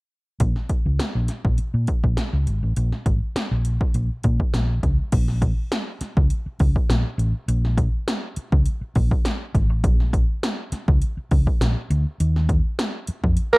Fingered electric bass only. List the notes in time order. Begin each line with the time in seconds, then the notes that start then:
0.40 A#1
0.86 C#2
1.15 A#1
1.45 A#1
1.59 muted fingered electric bass stroke
1.74 A#2
2.04 A#1
2.33 C#2
2.47 G#1
2.63 A1
2.77 A#1
3.06 G#1
3.35 muted fingered electric bass stroke
3.51 A#1
3.94 A#1
4.24 A#2
4.54 A#1
4.83 C#2
5.13 A#1
6.01 muted fingered electric bass stroke
6.17 C#2
6.46 muted fingered electric bass stroke
6.60 C#2
6.89 A#1
7.18 A1
7.48 A#1
8.37 muted fingered electric bass stroke
8.52 C#2
8.81 muted fingered electric bass stroke
8.96 A#1
9.55 G#1
9.70 A1
9.84 A#1
10.72 muted fingered electric bass stroke
10.88 C#2
11.17 muted fingered electric bass stroke
11.31 C#2
11.61 A#1
11.90 D2
12.20 D#2
13.08 muted fingered electric bass stroke
13.24 F2
13.53 muted fingered electric bass stroke